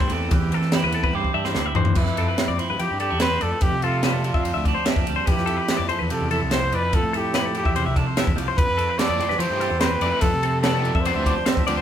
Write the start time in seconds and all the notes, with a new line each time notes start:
Already playing: E3 A3 C4 E4 G4 C5
0.00 G2, kick
0.10 E2 C4 A4, ride
0.31 E2 E3 G4, kick, ride
0.52 E3 C4 A4, ride
0.62 snare
0.72 E4 G4, snare, ride
0.83 E2 B4
0.92 C4 A4, ride
1.04 B4, kick
1.13 G2 G4 C5, high tom
1.24 kick
1.34 G2 D4 E5
1.45 E4 C5, snare
1.55 D2 D3, snare
1.66 E5
1.75 E2 E3 C5, floor tom
1.85 floor tom
1.95 F2 E4 B4, kick, crash
2.06 F2, snare
2.17 C4 A4, ride
2.28 B4
2.38 C4, snare, ride
2.48 F2 D5
2.59 E4 C5, ride
2.70 G2 B4
2.79 F3 G4, ride
2.91 G2
3.00 D4 G4 A4, ride
3.10 E2 E4
3.20 C4 B4 C5, snare, ride
3.41 F2 A3 A4 D5, ride
3.52 B4
3.61 F2 G4, kick, ride
3.72 C3
3.82 C4 F4 A4, ride
4.03 D4 F4 B4, snare, ride
4.14 A4
4.24 D4 F4, ride
4.34 F2 E5, kick
4.43 F2 C5, ride
4.54 D2 E5
4.65 D4 D5, kick, ride
4.74 C5
4.85 C4 E5, snare, ride
4.96 F2, kick
5.07 D2 G3 D5, ride
5.16 C5
5.26 F2 G4 B4, kick, ride
5.30 F3 E4
5.37 F2, snare
5.46 E4 A4, ride
5.57 B4
5.68 E4, snare, ride
5.77 F2 D5
5.89 A4 C5, ride
5.99 E2 B4
6.10 C3 F3 G4 A4, ride
6.21 E2
6.31 E4 A4, ride
6.41 C2
6.51 E4 C5, snare, ride
6.72 F2 F3 B4 D5, ride
6.83 B4
6.93 F2 A4, kick, ride
7.03 A2
7.13 E4 G4 A4, ride
7.34 E4 B4, snare, ride
7.38 G4
7.45 A4
7.55 E4 G4, ride
7.65 E2 E5, kick
7.75 C3 C5, ride
7.86 C2 E5
7.96 A4 D5, kick, ride
8.07 C5
8.17 E4 E5, snare, ride
8.27 E2, kick
8.36 C2 F3 D5, ride
8.48 C5
8.57 F2 B4, kick, ride
8.68 F2
8.77 C4 A4, ride
8.89 B4
8.98 E3 A3 C4 E4 A4 D5, snare, ride
9.09 F2 D5
9.20 G4 C5, ride
9.29 G2 B4, snare
9.39 E3 F3 A3 C4 E4 G4 C5, ride
9.50 G2
9.60 G4 A4, ride
9.70 E2
9.79 C4 B4 C5, snare, ride
10.01 F2 E3 A3 C4 E4 D5, ride
10.11 B4
10.21 F2 A4, kick, ride
10.33 C3
10.43 C4 A4, ride
10.61 F3 B3 D4 G4 A4 B4, snare, ride
10.74 A4
10.85 D4, ride
10.95 F2 E5, kick
11.01 C5
11.05 F2 F3 B3 D4 G4 C5, ride
11.15 D2 E5
11.26 D4 D5, kick, ride
11.37 C5
11.46 C4 E5, snare, ride
11.57 F2, kick
11.67 D2 F3 G3 B3 D4 G4 D5, ride
11.77 C5